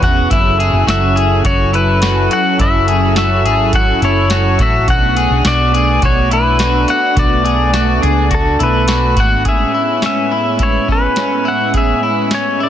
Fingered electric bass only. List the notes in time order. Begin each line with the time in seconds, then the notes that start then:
0.02 E1
0.31 F#1
0.73 F#1
0.86 F#1
1.45 F#1
2.59 F#1
3.45 G#1
4.02 F#1
4.59 A1
4.88 B1
5.30 B1
5.45 B1
6.02 B1
7.17 B1
8.03 C#2
8.60 B1
9.17 G#1